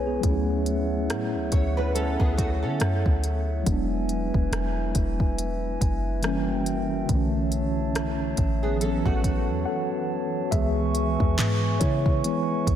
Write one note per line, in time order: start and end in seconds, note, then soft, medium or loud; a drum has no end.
0.00 0.20 B1 loud
0.00 0.18 G#3 medium
0.00 0.07 B3 soft
0.00 0.25 E4 soft
0.00 6.20 E4 medium
0.00 0.07 G#4 medium
0.00 0.20 B4 medium
0.00 0.25 B4 medium
0.00 0.25 C#5 medium
0.00 3.62 C#5 medium
0.00 0.20 G#5 medium
0.07 0.47 B3 soft
0.07 0.47 G#4 medium
0.21 1.11 D2 loud
0.21 3.61 F#3 medium
0.21 3.62 A3 medium
0.21 6.19 E5 medium
0.21 3.63 F#5 medium
0.21 kick loud
0.21 closed hi-hat medium
0.26 3.64 C#4 medium
0.26 3.65 E4 medium
0.66 closed hi-hat medium
1.10 1.36 A2 medium
1.10 cross-stick loud
1.10 closed hi-hat medium
1.34 1.51 D2 medium
1.52 2.17 D2 loud
1.52 1.76 E4 medium
1.52 1.76 C#5 medium
1.52 kick medium
1.52 closed hi-hat medium
1.77 1.94 D4 medium
1.77 1.94 B4 medium
1.95 2.19 C#4 medium
1.95 2.18 A4 medium
1.95 closed hi-hat medium
2.20 2.65 D2 loud
2.20 2.37 B3 medium
2.20 2.37 G#4 medium
2.20 kick medium
2.37 2.62 A3 medium
2.37 2.61 F#4 medium
2.37 kick medium
2.37 closed hi-hat medium
2.63 2.80 D3 medium
2.63 3.63 C#4 medium
2.63 3.62 A4 medium
2.80 3.05 F#2 medium
2.80 cross-stick loud
2.80 closed hi-hat medium
3.06 3.64 D2 loud
3.06 kick medium
3.24 closed hi-hat medium
3.63 4.32 E1 loud
3.63 6.18 F#3 medium
3.63 6.19 G#3 medium
3.63 6.21 B4 medium
3.63 kick loud
3.63 closed hi-hat medium
3.67 6.21 B3 medium
3.67 6.21 G#5 medium
3.72 6.22 D4 medium
4.09 closed hi-hat medium
4.34 4.51 E1 medium
4.34 kick medium
4.52 4.93 E1 loud
4.52 cross-stick loud
4.52 closed hi-hat medium
4.95 5.77 E1 loud
4.95 kick medium
4.95 closed hi-hat medium
5.20 kick medium
5.38 closed hi-hat medium
5.81 7.06 F#1 loud
5.81 kick medium
5.81 closed hi-hat medium
6.22 7.08 E3 medium
6.22 7.09 G3 medium
6.22 7.10 A#3 medium
6.22 7.08 F#4 medium
6.22 7.08 A#4 medium
6.22 7.08 E5 medium
6.22 7.08 G5 medium
6.22 cross-stick loud
6.22 closed hi-hat medium
6.27 7.11 C#4 medium
6.66 closed hi-hat medium
7.06 8.34 B1 loud
7.06 8.75 D3 medium
7.06 8.76 E3 medium
7.06 8.79 E4 medium
7.06 8.79 C#5 medium
7.06 8.79 E5 medium
7.06 10.49 A5 medium
7.06 kick loud
7.06 closed hi-hat medium
7.12 8.78 A3 medium
7.12 8.80 C#4 medium
7.52 closed hi-hat medium
7.95 cross-stick loud
7.95 closed hi-hat medium
8.37 9.03 A1 loud
8.37 kick medium
8.37 closed hi-hat medium
8.63 8.80 B3 medium
8.63 8.80 G#4 medium
8.77 10.47 E3 medium
8.77 10.48 F#3 medium
8.77 10.50 F#4 medium
8.77 9.04 A4 medium
8.77 10.50 B4 medium
8.77 10.50 C#5 medium
8.77 closed hi-hat medium
8.81 10.50 B3 medium
8.81 9.05 C#4 medium
8.86 10.51 C#4 medium
9.06 9.50 A1 loud
9.06 10.30 A3 medium
9.06 10.30 F#4 medium
9.06 kick medium
9.24 kick medium
9.24 closed hi-hat medium
9.49 9.66 E2 medium
9.65 10.49 A4 medium
9.65 10.54 F#5 medium
10.51 11.17 C#2 loud
10.51 11.77 E3 medium
10.51 11.77 G#3 medium
10.51 11.77 B3 medium
10.51 11.77 G#4 medium
10.51 12.76 B4 medium
10.51 11.84 E5 loud
10.51 12.76 E5 medium
10.51 12.76 G#5 medium
10.51 12.76 C#6 medium
10.51 kick loud
10.51 closed hi-hat medium
10.95 closed hi-hat medium
11.20 11.37 E2 loud
11.20 kick loud
11.39 11.79 G#2 loud
11.39 clap loud
11.39 closed hi-hat medium
11.80 12.22 C#3 loud
11.80 12.76 E4 medium
11.80 12.76 C#5 loud
11.80 kick medium
11.80 closed hi-hat medium
12.06 kick medium
12.24 12.63 E3 soft
12.24 12.63 G#3 soft
12.24 12.63 B3 medium
12.24 closed hi-hat medium
12.67 12.76 B1 loud
12.67 kick medium
12.67 closed hi-hat medium